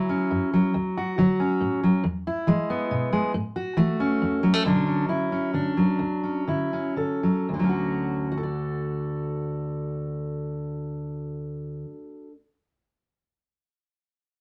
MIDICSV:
0, 0, Header, 1, 2, 480
1, 0, Start_track
1, 0, Key_signature, 2, "major"
1, 0, Tempo, 434153
1, 812, Time_signature, 3, 2, 24, 8
1, 5611, Tempo, 460829
1, 7051, Tempo, 515021
1, 8011, Tempo, 547445
1, 14074, End_track
2, 0, Start_track
2, 0, Title_t, "Steel-string acoustic guitar"
2, 0, Program_c, 0, 25
2, 0, Note_on_c, 0, 50, 62
2, 0, Note_on_c, 0, 54, 63
2, 0, Note_on_c, 0, 64, 50
2, 102, Note_on_c, 0, 61, 61
2, 283, Note_off_c, 0, 50, 0
2, 340, Note_on_c, 0, 42, 60
2, 576, Note_off_c, 0, 54, 0
2, 591, Note_on_c, 0, 54, 62
2, 768, Note_off_c, 0, 42, 0
2, 783, Note_off_c, 0, 64, 0
2, 788, Note_off_c, 0, 61, 0
2, 820, Note_on_c, 0, 38, 82
2, 1077, Note_on_c, 0, 66, 56
2, 1248, Note_off_c, 0, 38, 0
2, 1294, Note_off_c, 0, 54, 0
2, 1303, Note_on_c, 0, 50, 66
2, 1312, Note_on_c, 0, 54, 62
2, 1546, Note_on_c, 0, 61, 58
2, 1730, Note_off_c, 0, 50, 0
2, 1776, Note_on_c, 0, 45, 66
2, 2015, Note_off_c, 0, 54, 0
2, 2028, Note_on_c, 0, 54, 61
2, 2205, Note_off_c, 0, 45, 0
2, 2229, Note_off_c, 0, 61, 0
2, 2235, Note_off_c, 0, 66, 0
2, 2251, Note_on_c, 0, 40, 83
2, 2259, Note_off_c, 0, 54, 0
2, 2511, Note_on_c, 0, 64, 58
2, 2682, Note_off_c, 0, 40, 0
2, 2731, Note_on_c, 0, 52, 63
2, 2740, Note_on_c, 0, 56, 63
2, 2984, Note_on_c, 0, 59, 63
2, 3162, Note_off_c, 0, 52, 0
2, 3218, Note_on_c, 0, 47, 76
2, 3443, Note_off_c, 0, 56, 0
2, 3456, Note_on_c, 0, 56, 67
2, 3645, Note_off_c, 0, 47, 0
2, 3663, Note_off_c, 0, 56, 0
2, 3667, Note_off_c, 0, 59, 0
2, 3670, Note_off_c, 0, 64, 0
2, 3694, Note_on_c, 0, 45, 87
2, 3934, Note_on_c, 0, 66, 61
2, 4123, Note_off_c, 0, 45, 0
2, 4165, Note_on_c, 0, 52, 67
2, 4171, Note_on_c, 0, 57, 66
2, 4422, Note_on_c, 0, 61, 62
2, 4599, Note_off_c, 0, 52, 0
2, 4662, Note_on_c, 0, 40, 70
2, 4889, Note_off_c, 0, 57, 0
2, 4897, Note_on_c, 0, 54, 63
2, 5015, Note_off_c, 0, 54, 0
2, 5015, Note_on_c, 0, 57, 57
2, 5087, Note_off_c, 0, 40, 0
2, 5103, Note_off_c, 0, 66, 0
2, 5107, Note_off_c, 0, 61, 0
2, 5132, Note_off_c, 0, 57, 0
2, 5141, Note_on_c, 0, 47, 72
2, 5146, Note_on_c, 0, 50, 53
2, 5155, Note_on_c, 0, 54, 60
2, 5164, Note_on_c, 0, 61, 53
2, 5166, Note_on_c, 0, 62, 63
2, 5376, Note_off_c, 0, 61, 0
2, 5381, Note_on_c, 0, 61, 41
2, 5570, Note_off_c, 0, 47, 0
2, 5609, Note_off_c, 0, 50, 0
2, 5621, Note_on_c, 0, 50, 49
2, 5623, Note_off_c, 0, 62, 0
2, 5627, Note_on_c, 0, 64, 53
2, 5863, Note_off_c, 0, 61, 0
2, 5867, Note_on_c, 0, 61, 47
2, 6034, Note_off_c, 0, 50, 0
2, 6084, Note_off_c, 0, 64, 0
2, 6091, Note_on_c, 0, 50, 54
2, 6099, Note_on_c, 0, 62, 52
2, 6331, Note_off_c, 0, 54, 0
2, 6336, Note_on_c, 0, 54, 50
2, 6513, Note_off_c, 0, 50, 0
2, 6562, Note_on_c, 0, 38, 66
2, 6594, Note_off_c, 0, 61, 0
2, 6820, Note_on_c, 0, 61, 43
2, 7005, Note_off_c, 0, 38, 0
2, 7062, Note_off_c, 0, 62, 0
2, 7067, Note_on_c, 0, 50, 51
2, 7076, Note_on_c, 0, 64, 43
2, 7291, Note_off_c, 0, 61, 0
2, 7305, Note_on_c, 0, 61, 45
2, 7479, Note_off_c, 0, 50, 0
2, 7524, Note_on_c, 0, 50, 43
2, 7527, Note_off_c, 0, 64, 0
2, 7531, Note_on_c, 0, 69, 44
2, 7762, Note_off_c, 0, 54, 0
2, 7773, Note_on_c, 0, 54, 42
2, 7965, Note_off_c, 0, 50, 0
2, 7988, Note_off_c, 0, 69, 0
2, 7994, Note_off_c, 0, 61, 0
2, 8011, Note_on_c, 0, 38, 54
2, 8056, Note_on_c, 0, 50, 43
2, 8093, Note_off_c, 0, 54, 0
2, 8104, Note_on_c, 0, 54, 45
2, 8142, Note_on_c, 0, 61, 43
2, 8190, Note_on_c, 0, 66, 40
2, 8734, Note_off_c, 0, 54, 0
2, 8738, Note_off_c, 0, 66, 0
2, 8738, Note_on_c, 0, 66, 47
2, 8786, Note_off_c, 0, 61, 0
2, 8789, Note_on_c, 0, 69, 51
2, 8839, Note_on_c, 0, 74, 44
2, 11825, Note_off_c, 0, 38, 0
2, 11870, Note_off_c, 0, 50, 0
2, 12211, Note_off_c, 0, 66, 0
2, 12236, Note_off_c, 0, 69, 0
2, 12261, Note_off_c, 0, 74, 0
2, 14074, End_track
0, 0, End_of_file